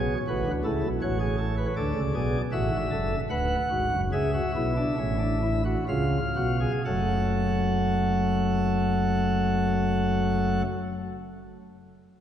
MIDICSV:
0, 0, Header, 1, 2, 480
1, 0, Start_track
1, 0, Key_signature, 3, "minor"
1, 0, Tempo, 744417
1, 1135, Time_signature, 3, 2, 24, 8
1, 1623, Tempo, 783290
1, 2103, Tempo, 834492
1, 3063, Tempo, 902256
1, 3543, Tempo, 970874
1, 4023, Tempo, 1006711
1, 6580, End_track
2, 0, Start_track
2, 0, Title_t, "Pipe organ"
2, 0, Program_c, 0, 19
2, 0, Note_on_c, 0, 35, 76
2, 0, Note_on_c, 0, 47, 77
2, 0, Note_on_c, 0, 68, 67
2, 0, Note_on_c, 0, 73, 62
2, 89, Note_off_c, 0, 35, 0
2, 90, Note_off_c, 0, 47, 0
2, 91, Note_off_c, 0, 68, 0
2, 114, Note_off_c, 0, 73, 0
2, 176, Note_on_c, 0, 33, 67
2, 177, Note_on_c, 0, 45, 66
2, 177, Note_on_c, 0, 66, 66
2, 181, Note_on_c, 0, 71, 59
2, 280, Note_off_c, 0, 33, 0
2, 281, Note_off_c, 0, 45, 0
2, 296, Note_on_c, 0, 50, 74
2, 297, Note_on_c, 0, 38, 77
2, 325, Note_off_c, 0, 66, 0
2, 328, Note_off_c, 0, 71, 0
2, 400, Note_off_c, 0, 50, 0
2, 401, Note_off_c, 0, 38, 0
2, 414, Note_on_c, 0, 64, 62
2, 415, Note_on_c, 0, 69, 57
2, 416, Note_on_c, 0, 37, 68
2, 416, Note_on_c, 0, 49, 76
2, 519, Note_off_c, 0, 49, 0
2, 520, Note_off_c, 0, 37, 0
2, 538, Note_on_c, 0, 35, 71
2, 541, Note_on_c, 0, 47, 75
2, 563, Note_off_c, 0, 64, 0
2, 564, Note_off_c, 0, 69, 0
2, 640, Note_off_c, 0, 35, 0
2, 642, Note_off_c, 0, 47, 0
2, 655, Note_on_c, 0, 73, 69
2, 656, Note_on_c, 0, 45, 85
2, 657, Note_on_c, 0, 33, 83
2, 657, Note_on_c, 0, 66, 70
2, 760, Note_off_c, 0, 66, 0
2, 772, Note_on_c, 0, 68, 63
2, 876, Note_off_c, 0, 68, 0
2, 891, Note_on_c, 0, 69, 63
2, 996, Note_off_c, 0, 69, 0
2, 1017, Note_on_c, 0, 71, 58
2, 1067, Note_off_c, 0, 73, 0
2, 1068, Note_off_c, 0, 33, 0
2, 1068, Note_off_c, 0, 45, 0
2, 1120, Note_off_c, 0, 71, 0
2, 1138, Note_on_c, 0, 38, 75
2, 1138, Note_on_c, 0, 69, 74
2, 1139, Note_on_c, 0, 74, 68
2, 1140, Note_on_c, 0, 50, 76
2, 1241, Note_off_c, 0, 38, 0
2, 1242, Note_off_c, 0, 50, 0
2, 1257, Note_on_c, 0, 37, 74
2, 1260, Note_on_c, 0, 49, 72
2, 1288, Note_off_c, 0, 69, 0
2, 1361, Note_off_c, 0, 37, 0
2, 1363, Note_off_c, 0, 49, 0
2, 1383, Note_on_c, 0, 47, 82
2, 1384, Note_on_c, 0, 68, 76
2, 1386, Note_on_c, 0, 35, 80
2, 1533, Note_off_c, 0, 47, 0
2, 1534, Note_off_c, 0, 68, 0
2, 1535, Note_off_c, 0, 35, 0
2, 1556, Note_off_c, 0, 74, 0
2, 1626, Note_on_c, 0, 76, 70
2, 1627, Note_on_c, 0, 33, 80
2, 1627, Note_on_c, 0, 45, 76
2, 1627, Note_on_c, 0, 66, 62
2, 1727, Note_off_c, 0, 33, 0
2, 1727, Note_off_c, 0, 45, 0
2, 1737, Note_on_c, 0, 32, 78
2, 1739, Note_on_c, 0, 44, 79
2, 1773, Note_off_c, 0, 66, 0
2, 1841, Note_off_c, 0, 32, 0
2, 1842, Note_off_c, 0, 44, 0
2, 1861, Note_on_c, 0, 30, 76
2, 1861, Note_on_c, 0, 42, 75
2, 1862, Note_on_c, 0, 69, 68
2, 2011, Note_off_c, 0, 30, 0
2, 2011, Note_off_c, 0, 42, 0
2, 2012, Note_off_c, 0, 69, 0
2, 2037, Note_off_c, 0, 76, 0
2, 2101, Note_on_c, 0, 38, 82
2, 2102, Note_on_c, 0, 78, 80
2, 2103, Note_on_c, 0, 26, 76
2, 2103, Note_on_c, 0, 71, 80
2, 2247, Note_off_c, 0, 26, 0
2, 2247, Note_off_c, 0, 38, 0
2, 2247, Note_off_c, 0, 71, 0
2, 2333, Note_on_c, 0, 66, 63
2, 2335, Note_on_c, 0, 32, 68
2, 2335, Note_on_c, 0, 44, 69
2, 2437, Note_off_c, 0, 32, 0
2, 2437, Note_off_c, 0, 44, 0
2, 2456, Note_on_c, 0, 30, 70
2, 2456, Note_on_c, 0, 42, 73
2, 2482, Note_off_c, 0, 66, 0
2, 2508, Note_off_c, 0, 78, 0
2, 2558, Note_off_c, 0, 30, 0
2, 2558, Note_off_c, 0, 42, 0
2, 2574, Note_on_c, 0, 37, 77
2, 2574, Note_on_c, 0, 49, 76
2, 2576, Note_on_c, 0, 68, 76
2, 2578, Note_on_c, 0, 76, 76
2, 2679, Note_off_c, 0, 68, 0
2, 2699, Note_on_c, 0, 66, 70
2, 2724, Note_off_c, 0, 37, 0
2, 2724, Note_off_c, 0, 49, 0
2, 2802, Note_off_c, 0, 66, 0
2, 2824, Note_on_c, 0, 47, 80
2, 2826, Note_on_c, 0, 35, 71
2, 2827, Note_on_c, 0, 64, 75
2, 2928, Note_off_c, 0, 64, 0
2, 2947, Note_on_c, 0, 62, 72
2, 2975, Note_off_c, 0, 47, 0
2, 2977, Note_off_c, 0, 35, 0
2, 3050, Note_off_c, 0, 62, 0
2, 3068, Note_on_c, 0, 61, 70
2, 3070, Note_on_c, 0, 45, 70
2, 3071, Note_on_c, 0, 33, 69
2, 3167, Note_off_c, 0, 61, 0
2, 3180, Note_on_c, 0, 62, 70
2, 3282, Note_off_c, 0, 62, 0
2, 3305, Note_on_c, 0, 64, 66
2, 3406, Note_off_c, 0, 64, 0
2, 3415, Note_off_c, 0, 76, 0
2, 3424, Note_on_c, 0, 66, 72
2, 3480, Note_off_c, 0, 33, 0
2, 3480, Note_off_c, 0, 45, 0
2, 3528, Note_off_c, 0, 66, 0
2, 3550, Note_on_c, 0, 37, 74
2, 3550, Note_on_c, 0, 49, 73
2, 3550, Note_on_c, 0, 65, 75
2, 3550, Note_on_c, 0, 77, 80
2, 3694, Note_off_c, 0, 37, 0
2, 3694, Note_off_c, 0, 49, 0
2, 3694, Note_off_c, 0, 65, 0
2, 3785, Note_on_c, 0, 35, 61
2, 3786, Note_on_c, 0, 47, 65
2, 3786, Note_on_c, 0, 66, 59
2, 3887, Note_off_c, 0, 66, 0
2, 3905, Note_on_c, 0, 68, 67
2, 3935, Note_off_c, 0, 35, 0
2, 3935, Note_off_c, 0, 47, 0
2, 3960, Note_off_c, 0, 77, 0
2, 4009, Note_off_c, 0, 68, 0
2, 4027, Note_on_c, 0, 42, 64
2, 4027, Note_on_c, 0, 69, 61
2, 4027, Note_on_c, 0, 78, 57
2, 4028, Note_on_c, 0, 30, 59
2, 4040, Note_on_c, 0, 54, 57
2, 4041, Note_on_c, 0, 57, 54
2, 5821, Note_off_c, 0, 42, 0
2, 5821, Note_off_c, 0, 78, 0
2, 5822, Note_off_c, 0, 30, 0
2, 5822, Note_off_c, 0, 69, 0
2, 5828, Note_off_c, 0, 54, 0
2, 5828, Note_off_c, 0, 57, 0
2, 6580, End_track
0, 0, End_of_file